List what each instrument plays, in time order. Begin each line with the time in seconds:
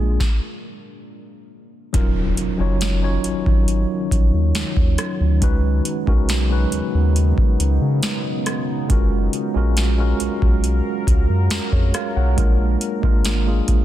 Already playing: sub bass A#1, ambient pad G#3 A#3 D4, tine electric piano G#3 A#3 D4 F4 G#4
0.20 kick, snare
1.93 sub bass D#1, ambient pad D#3 F#3 C#4, tine electric piano F#3 C#4 D#4 F4 A#4, kick, closed hi-hat, impact
2.37 closed hi-hat
2.58 sub bass F#1, tine electric piano F#3 C#4 D#4 F4 C#5
2.81 snare, closed hi-hat
3.01 tine electric piano F#3 C#4 D#4 F4 C#5
3.24 sub bass G#1, closed hi-hat
3.46 sub bass G#1, kick
3.68 closed hi-hat
4.11 sub bass A#1, kick, closed hi-hat
4.34 sub bass D#2
4.55 sub bass D#2, snare, closed hi-hat
4.77 sub bass D#2, kick
4.98 cross-stick, closed hi-hat
5.20 sub bass D2
5.41 sub bass C#2, ambient pad C#3 B3 D#4, tine electric piano G#3 C#4 D#4 F#4 B4, kick, closed hi-hat
5.85 closed hi-hat
6.06 sub bass B1, tine electric piano G#3 C#4 D#4 F#4 A#4, kick
6.29 snare, closed hi-hat
6.49 tine electric piano G#3 C#4 D#4 F#4 B4
6.72 sub bass D#2, closed hi-hat
6.94 sub bass D#2
7.16 closed hi-hat
7.38 kick
7.60 sub bass C#2, closed hi-hat
7.81 sub bass C#3
8.03 snare, closed hi-hat
8.46 cross-stick, closed hi-hat
8.89 sub bass F#1, ambient pad F#3 A#4 F5, tine electric piano G#3 C#4 F4 F#4 A#4, kick, closed hi-hat
9.33 closed hi-hat
9.54 sub bass A#1, tine electric piano G#3 C#4 F4 F#4 A#4
9.77 snare, closed hi-hat
9.97 tine electric piano G#3 C#4 F4 F#4 A#4
10.20 sub bass B1, closed hi-hat
10.42 sub bass B1, kick
10.64 closed hi-hat
11.07 sub bass C#2, kick, closed hi-hat
11.29 sub bass F#2
11.50 sub bass F2, snare, closed hi-hat
11.72 sub bass F2, tine electric piano G#4 C#5, kick
11.94 tine electric piano A#4 F5, cross-stick, closed hi-hat
12.16 sub bass B1, tine electric piano C#5 F#5
12.36 sub bass A#1, tine electric piano G#3 A#3 D4 F4 A#4, ambient pad G#3 A#3 D4, kick, closed hi-hat
12.81 closed hi-hat
13.02 sub bass G#1, tine electric piano G#3 A#3 D4 F4 A#4, kick
13.25 snare, closed hi-hat
13.45 tine electric piano G#3 A#3 D4 F4 G#4
13.68 sub bass B1, kick, closed hi-hat